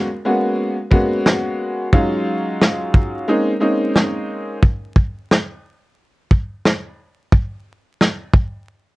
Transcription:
0.25 0.74 G#3 medium
0.25 0.74 A#3 medium
0.25 0.74 B3 medium
0.25 0.74 C#4 medium
0.25 0.75 F#4 medium
0.91 1.86 G#3 loud
0.91 1.86 A#3 medium
0.91 1.86 B3 medium
0.91 1.86 C#4 medium
0.91 1.86 F#4 loud
0.91 kick medium
1.26 cross-stick medium
1.26 snare loud
1.93 3.28 F#3 loud
1.93 3.27 G#3 medium
1.93 3.27 C#4 medium
1.93 3.27 D#4 medium
1.93 3.28 F4 loud
1.93 kick loud
2.61 cross-stick medium
2.61 snare loud
2.94 kick loud
3.28 3.51 G#3 medium
3.28 3.51 A#3 medium
3.28 3.51 C4 medium
3.28 3.51 C#4 medium
3.28 3.51 D#4 loud
3.60 4.56 G#3 medium
3.60 4.56 A#3 medium
3.60 4.56 C4 medium
3.60 4.56 C#4 medium
3.60 4.56 D#4 loud
3.96 cross-stick medium
3.96 snare loud
4.63 kick loud
4.96 kick medium
5.31 cross-stick medium
5.31 snare loud
6.31 kick medium
6.65 cross-stick medium
6.65 snare loud
7.32 kick loud
8.01 cross-stick medium
8.01 snare loud
8.34 kick loud

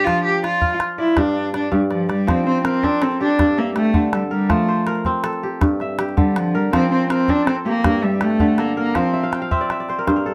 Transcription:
0.00 0.10 G2 medium
0.00 0.42 D5 medium
0.04 1.22 F3 medium
0.04 0.23 F4 loud
0.04 calabash thump soft
0.04 calabash click soft
0.24 0.41 G4 loud
0.43 0.77 F4 medium
0.43 0.98 D5 medium
0.43 calabash click soft
0.61 0.79 F4 medium
0.61 calabash thump medium
0.61 calabash click soft
0.71 calabash click soft
0.80 2.31 F4 medium
0.80 calabash click medium
0.98 1.20 E4 medium
0.98 1.53 D5 medium
1.08 calabash click soft
1.17 1.70 G2 medium
1.17 1.54 D4 medium
1.17 calabash thump medium
1.17 calabash click medium
1.54 1.72 D4 medium
1.54 1.90 D5 medium
1.54 calabash click medium
1.63 calabash click soft
1.72 2.33 G2 medium
1.72 1.81 G3 medium
1.72 calabash thump soft
1.91 2.09 F3 medium
1.91 2.08 D5 medium
1.91 calabash click soft
2.09 2.31 G3 medium
2.09 3.19 D5 medium
2.09 calabash click medium
2.27 3.44 F3 medium
2.27 2.46 C4 medium
2.27 calabash thump medium
2.27 calabash click medium
2.47 2.64 C4 medium
2.47 3.65 C5 medium
2.65 2.85 C4 medium
2.65 3.92 A#4 medium
2.65 calabash click medium
2.74 calabash click soft
2.83 4.64 C4 medium
2.83 3.04 D4 loud
2.83 calabash thump medium
2.83 calabash click soft
3.02 3.20 C4 medium
3.02 4.12 A4 medium
3.02 calabash click medium
3.12 calabash click soft
3.20 3.60 D4 loud
3.20 3.75 G4 medium
3.39 4.55 G2 medium
3.39 calabash thump medium
3.39 calabash click medium
3.58 3.75 A#3 medium
3.58 4.55 E5 medium
3.58 calabash click soft
3.76 4.10 A3 medium
3.76 5.17 G4 medium
3.76 calabash click medium
3.85 calabash click soft
3.94 4.55 D3 medium
3.94 calabash thump medium
4.13 4.22 G3 medium
4.13 4.93 A4 medium
4.13 calabash click medium
4.31 4.52 G3 medium
4.31 4.87 A#4 medium
4.49 5.66 F3 medium
4.49 4.92 A3 medium
4.49 calabash thump medium
4.49 calabash click medium
4.68 5.87 C5 medium
4.87 6.14 A#4 medium
4.87 calabash click medium
4.96 calabash click soft
5.05 6.86 C4 medium
5.05 calabash thump medium
5.05 calabash click soft
5.24 6.61 A4 medium
5.24 calabash click medium
5.33 calabash click soft
5.43 5.98 G4 medium
5.61 6.78 G2 medium
5.61 calabash thump medium
5.61 calabash click medium
5.80 6.79 E5 medium
5.80 calabash click soft
5.99 7.40 G4 medium
5.99 calabash click medium
6.09 calabash click soft
6.17 6.78 D3 medium
6.17 6.37 G3 medium
6.17 calabash thump medium
6.36 6.56 F3 medium
6.36 calabash click medium
6.55 6.72 G3 medium
6.55 7.11 A#4 medium
6.73 7.89 F3 medium
6.73 6.90 C4 loud
6.73 calabash thump medium
6.73 calabash click medium
6.92 7.09 C4 medium
6.92 8.11 C5 medium
7.10 7.31 C4 medium
7.10 8.38 A#4 medium
7.10 calabash click medium
7.20 calabash click soft
7.28 9.09 C4 medium
7.28 7.46 D4 loud
7.28 calabash thump medium
7.28 calabash click soft
7.47 7.55 C4 medium
7.47 8.58 A4 medium
7.47 calabash click medium
7.56 calabash click soft
7.66 8.06 A#3 loud
7.66 8.21 G4 medium
7.84 9.00 G2 medium
7.84 calabash thump medium
7.84 calabash click medium
8.03 8.24 G3 medium
8.03 9.01 E5 medium
8.03 calabash click soft
8.21 8.61 A3 medium
8.21 9.63 G4 medium
8.21 calabash click medium
8.30 calabash click soft
8.40 9.00 D3 medium
8.40 calabash thump medium
8.58 8.77 A#3 medium
8.58 9.90 A4 medium
8.58 calabash click medium
8.77 8.99 A#3 medium
8.77 9.98 A#4 medium
8.95 10.11 F3 medium
8.95 9.38 C4 medium
8.95 calabash thump medium
8.95 calabash click medium
9.13 9.48 E5 medium
9.23 9.41 F5 medium
9.23 calabash click soft
9.32 10.25 G5 medium
9.32 calabash click medium
9.42 9.77 F5 medium
9.42 calabash click soft
9.51 10.34 C4 medium
9.51 9.71 E5 medium
9.51 calabash thump medium
9.61 9.80 D5 medium
9.70 10.34 E5 medium
9.70 calabash click medium
9.80 10.34 D5 medium
9.89 10.07 C5 medium
9.89 calabash click soft
9.99 10.16 A#4 medium
10.07 10.34 G2 medium
10.07 10.34 C5 medium
10.07 calabash thump medium
10.07 calabash click medium
10.16 10.34 A#4 medium
10.26 10.34 A4 medium

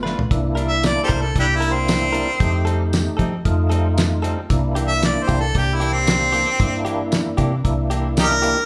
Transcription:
0.00 0.14 G1 medium
0.00 0.19 A3 medium
0.00 0.19 B3 medium
0.00 0.19 F4 medium
0.00 0.20 F4 medium
0.00 0.20 B4 medium
0.04 0.21 A3 medium
0.04 0.21 D4 medium
0.04 snare medium
0.19 floor tom medium
0.31 0.97 C2 medium
0.31 1.23 A#3 medium
0.31 1.24 D4 medium
0.31 1.24 E4 medium
0.31 kick loud
0.31 closed hi-hat medium
0.55 0.74 G3 medium
0.55 0.73 D4 medium
0.55 0.73 E4 medium
0.55 0.72 A#4 medium
0.55 closed hi-hat medium
0.68 0.84 E5 medium
0.83 1.02 D5 medium
0.83 snare medium
0.83 closed hi-hat medium
0.83 tambourine medium
1.03 1.11 G4 medium
1.03 1.11 A4 medium
1.03 1.23 C5 medium
1.08 1.32 C2 medium
1.08 1.26 G3 medium
1.08 1.26 D4 medium
1.08 1.25 E4 medium
1.08 1.25 A#4 medium
1.08 kick medium
1.08 closed hi-hat medium
1.21 1.37 A4 medium
1.36 2.24 C2 medium
1.36 2.28 A#3 medium
1.36 2.28 D4 medium
1.36 1.46 D4 medium
1.36 2.29 E4 medium
1.36 1.46 E4 medium
1.36 1.57 G4 medium
1.36 kick medium
1.36 closed hi-hat medium
1.56 1.75 E4 medium
1.60 1.78 G3 soft
1.60 1.78 D4 soft
1.60 1.78 E4 medium
1.60 1.77 A#4 medium
1.60 closed hi-hat medium
1.73 2.74 C4 medium
1.88 snare loud
1.88 closed hi-hat medium
1.88 tambourine loud
2.12 2.31 G3 medium
2.12 2.30 D4 medium
2.12 2.30 E4 medium
2.12 2.30 A#4 medium
2.12 closed hi-hat medium
2.40 3.07 F2 loud
2.40 3.33 A3 medium
2.40 3.33 D#4 medium
2.40 3.33 G4 medium
2.40 kick loud
2.40 closed hi-hat medium
2.65 2.83 G3 medium
2.65 2.83 C4 medium
2.65 2.83 D#4 medium
2.65 2.82 A4 medium
2.65 closed hi-hat medium
2.93 snare medium
2.93 closed hi-hat medium
2.93 tambourine medium
3.17 3.41 F3 medium
3.17 3.35 G3 medium
3.17 3.35 C4 medium
3.17 3.35 D#4 medium
3.17 3.34 A4 medium
3.17 kick medium
3.17 closed hi-hat medium
3.45 4.34 F2 medium
3.45 4.38 A3 medium
3.45 4.38 D#4 medium
3.45 4.38 F4 medium
3.45 kick medium
3.45 closed hi-hat medium
3.70 3.88 G3 medium
3.70 3.88 C4 medium
3.70 3.87 D#4 medium
3.70 3.87 A4 medium
3.70 closed hi-hat medium
3.98 snare loud
3.98 closed hi-hat medium
3.98 tambourine loud
4.22 4.40 G3 medium
4.22 4.40 C4 medium
4.22 4.40 D#4 medium
4.22 4.39 A4 medium
4.22 closed hi-hat medium
4.49 5.16 C2 medium
4.49 5.42 A#3 medium
4.49 5.43 D4 medium
4.49 5.43 E4 medium
4.49 kick loud
4.49 closed hi-hat medium
4.75 4.93 E3 medium
4.75 4.93 A#3 medium
4.75 4.92 D4 medium
4.75 4.92 G4 medium
4.75 closed hi-hat medium
4.88 5.07 E5 loud
5.03 5.25 D5 medium
5.03 snare loud
5.03 closed hi-hat medium
5.03 tambourine medium
5.23 5.42 C5 medium
5.28 5.51 C2 medium
5.28 5.45 E3 soft
5.28 5.45 A#3 medium
5.28 5.45 D4 medium
5.28 5.44 G4 medium
5.28 kick medium
5.28 closed hi-hat medium
5.40 5.56 A4 medium
5.55 6.43 C2 medium
5.55 6.48 A#3 medium
5.55 6.48 D4 medium
5.55 6.48 G4 medium
5.55 5.76 G4 medium
5.55 kick medium
5.55 closed hi-hat medium
5.75 5.94 E4 medium
5.80 5.98 E3 medium
5.80 5.98 A#3 soft
5.80 5.97 D4 medium
5.80 5.97 G4 medium
5.80 closed hi-hat medium
5.93 6.93 C4 medium
6.07 snare loud
6.07 closed hi-hat medium
6.07 tambourine loud
6.32 6.50 E3 medium
6.32 6.50 A#3 medium
6.32 6.50 D4 medium
6.32 6.49 G4 medium
6.32 closed hi-hat medium
6.59 7.26 G2 loud
6.59 7.52 A#3 medium
6.59 7.52 D4 medium
6.59 7.52 E4 medium
6.59 kick loud
6.59 closed hi-hat medium
6.85 7.03 E3 medium
6.85 7.02 A#3 medium
6.85 7.02 D4 medium
6.85 7.02 G4 medium
6.85 closed hi-hat medium
7.12 snare loud
7.12 closed hi-hat medium
7.12 tambourine loud
7.37 7.60 C3 medium
7.37 7.55 E3 medium
7.37 7.55 A#3 medium
7.37 7.54 D4 medium
7.37 7.54 G4 medium
7.37 kick medium
7.37 closed hi-hat medium
7.64 8.53 C2 medium
7.64 8.57 A#3 medium
7.64 8.57 D4 medium
7.64 8.57 E4 medium
7.64 kick medium
7.64 closed hi-hat medium
7.90 8.08 E3 medium
7.90 8.07 A#3 medium
7.90 8.07 D4 medium
7.90 8.07 G4 medium
7.90 closed hi-hat medium
8.17 8.26 D#4 medium
8.17 8.28 G4 medium
8.17 8.65 A#4 medium
8.17 snare loud
8.17 closed hi-hat medium
8.17 tambourine loud
8.42 8.60 E3 medium
8.42 8.59 A#3 medium
8.42 8.59 D4 medium
8.42 8.59 G4 medium
8.42 closed hi-hat medium

